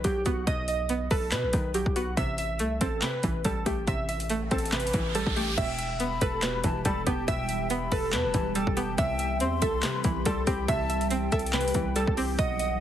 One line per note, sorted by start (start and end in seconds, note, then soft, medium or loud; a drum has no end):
0.00 0.46 B2 medium
0.00 0.90 D#3 medium
0.00 0.25 B3 medium
0.00 0.47 B4 medium
0.04 0.25 B1 loud
0.04 1.11 F#3 medium
0.04 0.23 G4 medium
0.04 kick medium
0.04 closed hi-hat medium
0.26 0.46 B1 loud
0.26 0.88 B3 medium
0.26 0.45 F#4 medium
0.26 kick medium
0.26 closed hi-hat medium
0.47 1.08 B1 loud
0.47 1.31 B2 loud
0.47 0.66 D#5 loud
0.47 kick loud
0.47 closed hi-hat medium
0.68 1.08 D#5 medium
0.68 closed hi-hat medium
0.89 1.95 B3 medium
0.89 closed hi-hat medium
1.11 1.34 B1 loud
1.11 1.30 A4 medium
1.11 2.17 B4 medium
1.11 kick medium
1.11 open hi-hat medium
1.32 2.17 B2 medium
1.32 1.45 B2 loud
1.32 1.72 B4 medium
1.32 snare loud
1.32 clap loud
1.32 closed hi-hat medium
1.43 1.53 B1 loud
1.53 1.85 B1 loud
1.53 2.17 D#3 medium
1.53 kick medium
1.53 closed hi-hat medium
1.74 2.17 F#3 medium
1.74 1.93 G4 medium
1.74 closed hi-hat medium
1.86 2.16 B1 loud
1.86 kick medium
1.96 2.17 B3 medium
1.96 2.15 F#4 medium
1.96 closed hi-hat medium
2.17 2.61 A1 loud
2.17 3.01 C3 loud
2.17 2.36 E5 loud
2.17 kick loud
2.17 closed hi-hat medium
2.38 2.79 E5 medium
2.38 closed hi-hat medium
2.59 2.80 C2 loud
2.59 3.65 A3 medium
2.59 closed hi-hat medium
2.81 3.02 A1 loud
2.81 3.88 C4 medium
2.81 3.00 A4 medium
2.81 kick medium
2.81 closed hi-hat medium
3.02 3.86 C3 loud
3.02 3.42 B4 medium
3.02 snare loud
3.02 clap loud
3.02 closed hi-hat medium
3.23 3.44 A1 loud
3.23 4.30 E3 medium
3.23 kick medium
3.23 closed hi-hat medium
3.45 3.65 A1 loud
3.45 4.51 G3 medium
3.45 3.64 A4 medium
3.45 kick medium
3.45 closed hi-hat medium
3.66 3.87 A1 loud
3.66 4.29 A3 medium
3.66 3.85 G4 medium
3.66 kick medium
3.66 closed hi-hat medium
3.87 4.49 A1 loud
3.87 4.71 C3 medium
3.87 4.06 E5 loud
3.87 kick loud
3.87 closed hi-hat medium
3.87 riser medium
4.09 4.49 E5 medium
4.09 closed hi-hat medium
4.20 closed hi-hat medium
4.30 5.35 A3 medium
4.30 closed hi-hat medium
4.51 4.92 A1 loud
4.51 5.58 C4 medium
4.51 4.70 A4 medium
4.51 kick medium
4.51 closed hi-hat medium
4.51 open hi-hat medium
4.58 closed hi-hat medium
4.65 closed hi-hat medium
4.73 5.58 C3 medium
4.73 5.13 B4 medium
4.73 snare loud
4.73 clap loud
4.73 closed hi-hat medium
4.80 closed hi-hat medium
4.87 closed hi-hat medium
4.93 5.25 A1 loud
4.93 5.58 E3 medium
4.93 kick medium
4.93 closed hi-hat medium
5.15 5.58 G3 medium
5.15 5.34 A4 medium
5.15 closed hi-hat medium
5.27 5.57 A1 loud
5.27 kick loud
5.36 5.58 A3 medium
5.36 5.55 G4 medium
5.36 open hi-hat medium
5.58 6.19 E1 loud
5.58 6.42 B2 medium
5.58 8.95 E3 medium
5.58 12.35 G3 medium
5.58 8.95 B3 medium
5.58 8.95 G4 medium
5.58 5.76 E5 loud
5.58 5.98 G5 loud
5.58 kick loud
5.58 closed hi-hat medium
5.58 crash loud
5.79 6.19 E5 medium
5.79 closed hi-hat medium
6.00 7.05 B3 medium
6.00 6.60 B5 medium
6.00 closed hi-hat medium
6.21 6.62 E1 loud
6.21 6.40 A4 medium
6.21 7.28 B4 medium
6.21 kick loud
6.21 closed hi-hat medium
6.43 7.27 B2 medium
6.43 6.83 B4 medium
6.43 snare loud
6.43 clap loud
6.43 closed hi-hat medium
6.64 6.85 E1 loud
6.64 7.71 E3 medium
6.64 6.84 A5 medium
6.64 kick medium
6.64 closed hi-hat medium
6.85 7.06 E1 loud
6.85 7.92 G3 medium
6.85 7.04 A4 medium
6.85 7.06 B5 medium
6.85 kick loud
6.85 closed hi-hat medium
7.06 7.27 E1 loud
7.06 7.69 B3 medium
7.06 7.25 G4 medium
7.06 7.27 A5 medium
7.06 kick medium
7.06 closed hi-hat medium
7.28 7.89 E1 loud
7.28 8.12 B2 medium
7.28 7.47 E5 loud
7.28 7.68 G5 loud
7.28 kick loud
7.28 closed hi-hat medium
7.49 7.89 E5 medium
7.49 closed hi-hat medium
7.70 8.76 B3 medium
7.70 8.11 B5 medium
7.70 closed hi-hat medium
7.92 8.15 E1 loud
7.92 8.11 A4 medium
7.92 8.98 B4 medium
7.92 kick medium
7.92 open hi-hat medium
8.13 8.26 E2 loud
8.13 8.98 B2 medium
8.13 8.53 B4 medium
8.13 8.53 A5 medium
8.13 snare loud
8.13 clap loud
8.13 closed hi-hat medium
8.24 8.34 E1 loud
8.34 8.66 E1 loud
8.34 8.98 E3 medium
8.34 kick medium
8.34 closed hi-hat medium
8.55 8.98 G3 medium
8.55 8.74 A4 medium
8.55 8.76 G5 medium
8.55 closed hi-hat medium
8.67 8.97 E1 loud
8.67 kick loud
8.77 8.98 B3 medium
8.77 8.96 G4 medium
8.77 8.97 A5 medium
8.77 closed hi-hat medium
8.98 9.42 C2 loud
8.98 9.82 C3 loud
8.98 12.35 E3 medium
8.98 12.35 C4 medium
8.98 12.35 G4 medium
8.98 9.17 E5 loud
8.98 9.38 G5 loud
8.98 kick loud
8.98 closed hi-hat medium
9.19 9.59 E5 medium
9.19 closed hi-hat medium
9.40 9.61 E2 loud
9.40 10.46 C4 medium
9.40 10.01 C6 loud
9.40 closed hi-hat medium
9.62 9.82 C2 loud
9.62 9.81 A4 medium
9.62 10.68 E5 medium
9.62 kick medium
9.62 closed hi-hat medium
9.83 10.67 C3 medium
9.83 10.23 B4 medium
9.83 snare loud
9.83 clap loud
9.83 closed hi-hat medium
10.04 10.25 C2 loud
10.04 11.11 E3 medium
10.04 10.25 B5 medium
10.04 kick medium
10.04 closed hi-hat medium
10.25 10.46 C2 loud
10.25 11.32 G3 medium
10.25 10.45 A4 medium
10.25 10.46 C6 medium
10.25 kick medium
10.25 closed hi-hat medium
10.47 10.68 C2 loud
10.47 11.10 C4 medium
10.47 10.66 G4 medium
10.47 10.67 B5 medium
10.47 kick medium
10.47 closed hi-hat medium
10.68 11.30 C2 loud
10.68 11.52 C3 loud
10.68 10.87 E5 loud
10.68 11.08 A5 loud
10.68 kick loud
10.68 closed hi-hat medium
10.90 11.30 E5 medium
10.90 closed hi-hat medium
11.01 closed hi-hat medium
11.11 12.16 C4 medium
11.11 12.07 G5 medium
11.11 closed hi-hat medium
11.32 11.73 C2 loud
11.32 11.51 A4 medium
11.32 12.39 E5 loud
11.32 kick medium
11.32 closed hi-hat medium
11.32 open hi-hat medium
11.39 closed hi-hat medium
11.46 closed hi-hat medium
11.53 12.39 C3 medium
11.53 11.93 B4 medium
11.53 snare loud
11.53 clap loud
11.53 closed hi-hat medium
11.61 closed hi-hat medium
11.68 closed hi-hat medium
11.74 12.06 C2 loud
11.74 12.39 E3 medium
11.74 kick medium
11.74 closed hi-hat medium
11.96 12.39 G3 medium
11.96 12.15 A4 medium
11.96 closed hi-hat medium
12.07 12.37 C2 loud
12.07 kick loud
12.17 12.39 C4 medium
12.17 12.36 G4 medium
12.17 open hi-hat medium
12.39 12.80 B1 loud
12.39 12.80 B2 medium
12.39 12.80 D#3 medium
12.39 12.80 F#3 medium
12.39 12.80 B3 medium
12.39 12.80 F#4 medium
12.39 12.58 D#5 loud
12.39 12.79 F#5 loud
12.39 kick loud
12.39 closed hi-hat medium
12.59 12.80 D#5 medium
12.59 closed hi-hat medium